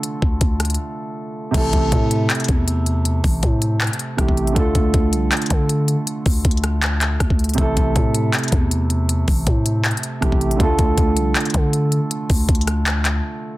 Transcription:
<<
  \new Staff \with { instrumentName = "Grand piano" } { \time 4/4 \key a \minor \tempo 4 = 159 <d a f' a'>1 | <c a e' a'>1~ | <c a e' a'>2. <c a e' g'>4 | <d a f' a'>1~ |
<d a f' a'>1 | <c a e' a'>1~ | <c a e' a'>2. <c a e' g'>4 | <d a f' a'>1~ |
<d a f' a'>1 | }
  \new Staff \with { instrumentName = "808-style bass" } { \clef bass \time 4/4 \key a \minor r8 d,8 d,4 r2 | a,,8 a,,8 a,4 r8 e,4.~ | e,8 a,,8 a,4~ a,16 r8. a,,16 a,,8. | d,8 d,8 d,8 c,8 r8 d4~ d16 r16 |
r8 d,8 d,2 d,16 d,8. | a,,8 a,,8 a,4 r8 e,4.~ | e,8 a,,8 a,4~ a,16 r8. a,,16 a,,8. | d,8 d,8 d,8 c,8 r8 d4~ d16 r16 |
r8 d,8 d,2 r4 | }
  \new DrumStaff \with { instrumentName = "Drums" } \drummode { \time 4/4 hh8 bd8 <hh bd>8 <hh hho ss>32 hh32 hh32 hh32 r4 r4 | <cymc hh bd>8 <hh bd>8 <hh bd>8 hh8 <hc hh>32 hh32 hh32 hh32 <hh bd>8 hh8 hh8 | hh8 <hho bd>8 <hh bd>8 hh8 \tuplet 3/2 { <hc hh>16 hh16 hh16 hh16 r16 r16 } <hh bd ss>16 bd16 hh16 hh16 | <hh bd>8 <hh bd>8 <hh bd>8 hh8 <hc hh>32 hh32 hh32 hh32 <hh bd>8 hh8 hh8 |
hh8 <hho bd>8 \tuplet 3/2 { <hh bd>16 hh16 hh16 <hh ss>16 r16 r16 } <hc hh>8 <hc hh>8 <hh bd ss>16 bd16 hh32 hh32 hh32 hh32 | <hh bd>8 <hh bd>8 <hh bd>8 hh8 <hc hh>32 hh32 hh32 hh32 <hh bd>8 hh8 hh8 | hh8 <hho bd>8 <hh bd>8 hh8 \tuplet 3/2 { <hc hh>16 hh16 hh16 hh16 r16 r16 } <hh bd ss>16 bd16 hh16 hh16 | <hh bd>8 <hh bd>8 <hh bd>8 hh8 <hc hh>32 hh32 hh32 hh32 <hh bd>8 hh8 hh8 |
hh8 <hho bd>8 \tuplet 3/2 { <hh bd>16 hh16 hh16 <hh ss>16 r16 r16 } <hc hh>8 <hc hh>8 r4 | }
>>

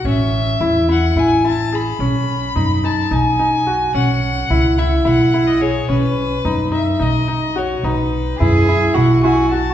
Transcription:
<<
  \new Staff \with { instrumentName = "Violin" } { \time 7/8 \key b \mixolydian \tempo 4 = 108 e''4. fis''8 gis''8 a''8 b''8~ | b''4. a''8 gis''4. | fis''4. e''8 fis''8. dis''16 cis''8 | b'4. e''8 dis''4 cis''8 |
b'4. e''8 fis''8 gis''8 a''8 | }
  \new Staff \with { instrumentName = "Cello" } { \time 7/8 \key b \mixolydian r2. r8 | r2. r8 | r2. r8 | r2. r8 |
r4 gis'4 fis'8 fis'4 | }
  \new Staff \with { instrumentName = "Grand piano" } { \time 7/8 \key b \mixolydian cis'4 e'8 e'8 e'8 e'8 gis'8 | cis'4 dis'8 dis'8 dis'8 dis'8 fis'8 | cis'4 e'8 e'8 e'8 e'8 gis'8 | cis'4 dis'8 dis'8 dis'8 dis'8 fis'8 |
dis'4 e'8 e'8 e'8 e'8 fis'8 | }
  \new Staff \with { instrumentName = "Upright bass" } { \clef bass \time 7/8 \key b \mixolydian a,,4 e,4 a,,4. | b,,4 fis,4 b,,4. | b,,4 cis,4 b,,4. | b,,4 fis,4 b,,4. |
b,,4 fis,4 b,,4. | }
>>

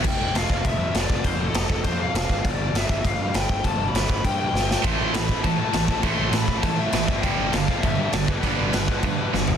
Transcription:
<<
  \new Staff \with { instrumentName = "Lead electric guitar" } { \time 4/4 \key g \mixolydian \tempo 4 = 200 g''4 f''4 e''4 d''4 | c''8. a'8. a'8 c''8 f''4. | d''4 e''4 f''4 g''4 | a''8. b''8. b''8 g''8 g''4. |
c'''4 b''4 a''8 a''4. | c'''4 b''4 a''8 e''4. | g''4 f''4 e''4 d''8 b'8~ | b'2. r4 | }
  \new Staff \with { instrumentName = "Distorted electric guitar" } { \clef bass \time 4/4 \key g \mixolydian r1 | r1 | r1 | r1 |
<a, e a>2 <a, e a>2 | <a, e a>2 <a, e a>4. <g, d g>8~ | <g, d g>4. <g, d g>2 <g, d g>8~ | <g, d g>4. <g, d g>2 r8 | }
  \new Staff \with { instrumentName = "Distorted electric guitar" } { \clef bass \time 4/4 \key g \mixolydian r1 | r1 | r1 | r1 |
<a, e a>4 <a, e>8 r8 <a, e>8 r8 <a, e>8 r8 | <a, e a>4 <a, e>8 r8 <a, e>8 r8 <a, e>8 r8 | <g, d g>4 <g, d>8 r8 <g, d>8 r8 <g, d>8 r8 | <g, d g>4 <g, d>8 r8 <g, d>8 r8 <g, d>8 r8 | }
  \new Staff \with { instrumentName = "Distorted electric guitar" } { \clef bass \time 4/4 \key g \mixolydian r1 | r1 | r1 | r1 |
<a, e a>4 <a, e>8 r8 <a, e>8 r8 <a, e>8 r8 | <a, e a>4 <a, e>8 r8 <a, e>8 r8 <a, e>8 r8 | <g, d g>4 <g, d>8 r8 <g, d>8 r8 <g, d>8 r8 | <g, d g>4 <g, d>8 r8 <g, d>8 r8 <g, d>8 r8 | }
  \new Staff \with { instrumentName = "Picked electric bass" } { \clef bass \time 4/4 \key g \mixolydian f,,8 f,,8 f,,8 f,,8 f,,8 f,8 f,,8 f,,8 | f,,8 f,,8 f,,8 f,,8 f,4 f,,8 g,,8 | g,,8 g,,8 g,,8 g,,8 g,,8 g,8 g,,8 g,,8 | g,,8 g,,8 g,,8 g,,8 g,4 g,,4 |
a,,8 a,,8 a,,8 a,,8 a,,8 a,8 a,,8 a,,8 | a,,8 a,,8 a,,8 a,,8 a,4 a,,8 g,,8 | g,,8 g,,8 g,,8 g,,8 g,,8 g,8 g,,8 g,,8 | g,,8 g,,8 g,,8 g,,8 g,4 g,,4 | }
  \new DrumStaff \with { instrumentName = "Drums" } \drummode { \time 4/4 <cymc bd>4 <cymc sn>8 bd8 <cymc bd>4 <cymc sn>8 bd8 | <cymc bd>4 <cymc sn>8 bd8 <cymc bd>4 <cymc sn>8 bd8 | <cymc bd>4 <cymc sn>8 bd8 <cymc bd>4 <cymc sn>8 bd8 | <cymc bd>4 <cymc sn>8 bd8 <cymc bd>4 sn8 sn8 |
<cymc bd>4 <cymc sn>8 bd8 <cymc bd>4 <cymc sn>8 bd8 | <cymc bd>4 <cymc sn>8 bd8 <cymc bd>4 <cymc sn>8 bd8 | <cymc bd>4 <cymc sn>8 bd8 <cymc bd>4 <cymc sn>8 bd8 | <cymc bd>4 <cymc sn>8 bd8 <cymc bd>4 sn8 tomfh8 | }
>>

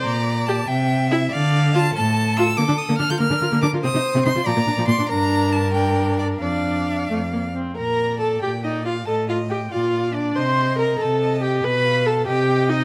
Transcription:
<<
  \new Staff \with { instrumentName = "Violin" } { \time 6/8 \key d \minor \tempo 4. = 94 bes''4 a''8 g''4 e''8 | d''4 a''8 a''4 e'''8 | \key bes \major d'''8 ees'''8 f'''16 g'''16 f'''4 d'''8 | ees'''4 c'''8 bes''4 c'''8 |
bes''4 a''8 g''4 d''8 | f''2~ f''8 r8 | r8 d''4. d''4 | ees''8 ees''4 d''8 d''4 |
ees''8 ees''4. ees''4 | r8 f''4 ees''8 ees''4 | }
  \new Staff \with { instrumentName = "Violin" } { \time 6/8 \key d \minor d''4. e''4. | f''4. a'4.~ | \key bes \major a'4. bes'4. | c''4. d''4. |
bes'2. | d''2~ d''16 r8. | bes''4 a''8 g''8 ees''8 f''8 | a''8 f''8 g''8 f''4 d''8 |
c'''4 bes''8 a''4 g''8 | b''4 a''8 g''4 ees''8 | }
  \new Staff \with { instrumentName = "Viola" } { \time 6/8 \key d \minor r4 g'16 r4 r16 e'16 r16 | r4 f'16 r4 r16 f'16 r16 | \key bes \major bes16 d'16 r16 bes16 d'16 f'16 bes16 d'16 f'16 bes16 d'16 f'16 | c'16 ees'16 r16 c'16 ees'16 f'16 f16 bes16 d'16 f16 bes16 d'16 |
d'4. d'4. | d'4. a8 bes8 c'8 | bes'4 a'8 g'8 ees'8 f'8 | a'8 f'8 g'8 f'4 d'8 |
c''4 bes'8 a'4 g'8 | b'4 a'8 g'4 ees'8 | }
  \new Staff \with { instrumentName = "Cello" } { \clef bass \time 6/8 \key d \minor bes,4~ bes,16 r16 c4~ c16 r16 | d4~ d16 r16 a,4~ a,16 r16 | \key bes \major d16 d16 r16 d16 d16 d16 d16 d16 d16 d16 d16 d16 | c16 c16 r16 c16 c16 c16 bes,16 bes,16 bes,16 bes,16 bes,16 bes,16 |
g,2. | f,4. f,4 r8 | bes,4~ bes,16 r16 bes,4~ bes,16 r16 | a,4~ a,16 r16 bes,4~ bes,16 r16 |
c4~ c16 r16 c4~ c16 r16 | b,4~ b,16 r16 c4~ c16 r16 | }
>>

